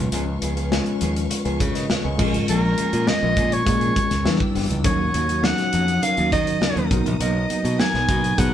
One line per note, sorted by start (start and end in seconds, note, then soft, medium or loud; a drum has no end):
0.00 0.10 B1 medium
0.00 0.64 G#3 medium
0.00 0.64 C#4 medium
0.00 0.64 F4 medium
0.00 0.65 B4 medium
0.00 2.16 B4 medium
0.00 2.16 F5 medium
0.00 4.21 C#6 medium
0.11 0.37 C#2 loud
0.11 0.34 F3 medium
0.11 0.27 B3 medium
0.11 0.26 C#4 medium
0.11 0.25 G#4 medium
0.11 closed hi-hat medium
0.26 muted clean electric guitar stroke soft
0.41 0.79 C#2 loud
0.41 0.57 F3 medium
0.41 0.56 B3 medium
0.41 0.56 C#4 medium
0.41 0.55 G#4 medium
0.41 closed hi-hat medium
0.41 muted conga medium
0.56 0.74 F3 medium
0.56 0.74 B3 medium
0.56 0.74 C#4 medium
0.56 0.73 G#4 medium
0.56 closed hi-hat soft
0.71 1.26 G#3 medium
0.71 1.26 C#4 medium
0.71 1.26 F4 medium
0.71 1.26 C#5 loud
0.71 snare loud
0.71 high conga medium
0.86 muted clean electric guitar stroke soft
0.86 closed hi-hat soft
1.01 1.26 D#2 medium
1.01 1.22 F3 medium
1.01 1.15 B3 loud
1.01 1.15 C#4 loud
1.01 1.14 G#4 loud
1.01 closed hi-hat medium
1.15 muted clean electric guitar stroke medium
1.15 closed hi-hat medium
1.30 1.45 F4 medium
1.30 1.45 A#4 medium
1.30 muted clean electric guitar stroke soft
1.30 closed hi-hat loud
1.30 muted conga medium
1.45 1.58 C#2 loud
1.45 1.59 F3 medium
1.45 1.59 B3 medium
1.45 1.60 C#4 medium
1.45 1.60 F4 medium
1.45 1.60 G#4 medium
1.45 1.60 B4 medium
1.45 closed hi-hat soft
1.60 1.85 C#3 loud
1.60 1.74 G#4 medium
1.60 1.74 C#5 medium
1.60 kick medium
1.60 closed hi-hat medium
1.60 muted conga soft
1.60 low conga medium
1.75 1.89 A#4 medium
1.75 1.89 D#5 medium
1.75 snare soft
1.75 closed hi-hat medium
1.89 2.04 B4 medium
1.89 muted clean electric guitar stroke soft
1.89 snare loud
1.89 high conga medium
2.04 2.17 C#2 loud
2.04 2.33 D#5 medium
2.04 2.32 G#5 medium
2.04 muted clean electric guitar stroke medium
2.18 2.35 A#1 loud
2.18 2.41 F3 medium
2.18 3.00 G#3 loud
2.18 2.34 A#3 medium
2.18 3.00 C#4 medium
2.18 2.33 C#4 medium
2.18 3.00 F4 medium
2.18 2.32 G#4 medium
2.18 3.00 A#4 loud
2.18 4.23 A#4 medium
2.18 4.23 G#5 medium
2.18 kick loud
2.18 crash medium
2.34 2.47 G#1 medium
2.34 muted clean electric guitar stroke soft
2.34 closed hi-hat medium
2.34 high conga medium
2.48 2.74 A#1 medium
2.48 2.70 F3 medium
2.48 2.63 A#3 medium
2.48 2.62 C#4 medium
2.48 2.62 G#4 medium
2.48 3.10 A#4 medium
2.48 closed hi-hat medium
2.63 muted clean electric guitar stroke soft
2.77 2.93 F3 medium
2.77 2.93 A#3 medium
2.77 2.92 C#4 medium
2.77 2.91 G#4 medium
2.77 closed hi-hat medium
2.77 muted conga medium
2.92 3.05 A#2 medium
2.92 3.10 F3 soft
2.92 3.10 A#3 medium
2.92 3.10 C#4 medium
2.92 3.09 G#4 medium
2.92 closed hi-hat soft
3.06 3.61 G#3 medium
3.06 3.61 C#4 medium
3.06 3.62 F4 medium
3.06 3.62 A#4 medium
3.06 3.55 D#5 loud
3.06 snare loud
3.06 high conga medium
3.22 3.35 A#1 medium
3.22 muted clean electric guitar stroke soft
3.37 3.62 A#2 loud
3.37 3.58 F3 medium
3.37 3.52 A#3 medium
3.37 3.51 C#4 medium
3.37 3.50 G#4 loud
3.37 kick medium
3.37 closed hi-hat medium
3.51 4.41 C#5 medium
3.51 muted clean electric guitar stroke medium
3.51 closed hi-hat medium
3.65 3.91 A#2 loud
3.65 4.20 G#3 medium
3.65 4.20 C#4 medium
3.65 4.21 F4 medium
3.65 3.73 G#4 medium
3.65 kick loud
3.65 closed hi-hat medium
3.65 muted conga medium
3.73 4.24 A#4 medium
3.81 3.95 F3 medium
3.81 3.95 A#3 medium
3.81 3.96 C#4 medium
3.81 3.96 G#4 medium
3.81 closed hi-hat soft
3.96 muted clean electric guitar stroke soft
3.96 kick medium
3.96 closed hi-hat medium
3.96 muted conga soft
4.10 4.23 C#2 medium
4.10 muted clean electric guitar stroke medium
4.10 snare soft
4.10 closed hi-hat medium
4.25 4.38 E2 loud
4.25 4.79 G3 medium
4.25 4.79 D4 medium
4.25 4.80 E4 medium
4.25 4.80 B4 medium
4.25 4.84 D5 medium
4.25 4.84 G5 medium
4.25 4.84 E6 medium
4.25 snare loud
4.25 high conga medium
4.40 muted clean electric guitar stroke soft
4.40 kick medium
4.54 4.67 F#1 medium
4.54 4.76 E3 medium
4.54 4.70 B3 loud
4.54 4.69 D4 loud
4.54 4.68 G4 loud
4.54 open hi-hat medium
4.69 4.82 C#2 medium
4.69 muted clean electric guitar stroke soft
4.69 closed hi-hat medium
4.69 high conga medium
4.84 5.09 D#2 medium
4.84 5.38 F#3 medium
4.84 5.06 F#3 medium
4.84 4.99 A#3 medium
4.84 5.38 C#4 medium
4.84 4.99 C#4 medium
4.84 5.39 D#4 medium
4.84 4.98 F#4 medium
4.84 5.39 A#4 medium
4.84 6.88 C#5 medium
4.84 5.46 C#5 medium
4.84 6.88 F#5 medium
4.84 8.54 D#6 medium
4.84 kick loud
4.84 closed hi-hat medium
4.99 muted clean electric guitar stroke soft
5.14 5.51 D#2 medium
5.14 5.29 F#3 medium
5.14 5.29 A#3 medium
5.14 5.28 C#4 medium
5.14 5.27 F#4 medium
5.14 closed hi-hat medium
5.14 muted conga soft
5.28 5.46 F#3 soft
5.28 5.46 A#3 medium
5.28 5.46 C#4 medium
5.28 5.45 F#4 medium
5.28 closed hi-hat soft
5.43 5.97 F#3 medium
5.43 5.97 C#4 medium
5.43 5.98 D#4 medium
5.43 5.98 F#4 medium
5.43 6.05 F#5 loud
5.43 snare loud
5.43 high conga medium
5.58 muted clean electric guitar stroke soft
5.58 snare soft
5.58 closed hi-hat soft
5.72 5.98 F2 medium
5.72 5.94 F#3 loud
5.72 5.88 A#3 medium
5.72 5.87 C#4 loud
5.72 5.87 F#4 medium
5.72 closed hi-hat medium
5.88 muted clean electric guitar stroke medium
5.88 closed hi-hat medium
6.02 6.56 F#3 medium
6.02 6.56 C#4 medium
6.02 6.57 D#4 medium
6.02 6.57 A#4 medium
6.02 6.32 F5 loud
6.02 closed hi-hat medium
6.02 muted conga medium
6.17 6.30 D#2 loud
6.17 6.30 F#3 medium
6.17 6.31 A#3 medium
6.17 6.31 C#4 medium
6.17 6.32 F#4 medium
6.17 closed hi-hat soft
6.31 6.57 D#3 loud
6.31 6.87 D#5 medium
6.31 kick medium
6.31 closed hi-hat medium
6.31 low conga medium
6.46 muted clean electric guitar stroke medium
6.46 closed hi-hat medium
6.61 6.89 F#3 medium
6.61 6.91 C#4 medium
6.61 6.90 D#4 medium
6.61 6.90 A#4 medium
6.61 snare loud
6.61 high conga medium
6.76 6.88 D#2 medium
6.76 closed hi-hat soft
6.90 7.03 B1 medium
6.90 7.72 F#3 medium
6.90 7.12 F#3 medium
6.90 7.06 A#3 medium
6.90 7.72 B3 medium
6.90 8.54 B3 medium
6.90 7.72 D#4 medium
6.90 7.05 D#4 medium
6.90 7.04 F#4 medium
6.90 7.72 A#4 medium
6.90 8.54 A#5 medium
6.90 kick loud
6.90 closed hi-hat medium
7.06 7.18 A#1 medium
7.06 muted clean electric guitar stroke soft
7.06 closed hi-hat medium
7.06 high conga medium
7.20 7.45 B1 loud
7.20 7.42 F#3 medium
7.20 7.35 A#3 medium
7.20 7.34 D#4 medium
7.20 7.34 F#4 medium
7.20 7.81 D#5 medium
7.20 closed hi-hat medium
7.35 muted clean electric guitar stroke soft
7.50 7.65 F#3 medium
7.50 7.64 A#3 medium
7.50 7.64 D#4 medium
7.50 7.63 F#4 medium
7.50 closed hi-hat medium
7.50 muted conga medium
7.64 7.77 B2 medium
7.64 7.82 F#3 medium
7.64 7.82 A#3 medium
7.64 7.82 D#4 medium
7.64 7.81 F#4 medium
7.64 closed hi-hat medium
7.79 8.33 F#3 medium
7.79 8.34 B3 medium
7.79 8.34 D#4 medium
7.79 8.34 A#4 medium
7.79 8.40 G#5 loud
7.79 snare loud
7.79 high conga medium
7.94 8.06 B1 loud
7.94 muted clean electric guitar stroke medium
7.94 snare soft
8.08 8.33 B2 loud
8.08 8.30 F#3 medium
8.08 8.24 A#3 medium
8.08 8.23 D#4 loud
8.08 8.22 F#4 loud
8.08 kick medium
8.08 closed hi-hat medium
8.23 muted clean electric guitar stroke soft
8.23 closed hi-hat medium
8.37 8.54 B2 loud
8.37 8.54 F#3 medium
8.37 8.54 B3 medium
8.37 8.54 D#4 medium
8.37 8.54 G#4 medium
8.37 8.54 F#5 medium
8.37 kick medium
8.37 closed hi-hat medium
8.37 muted conga medium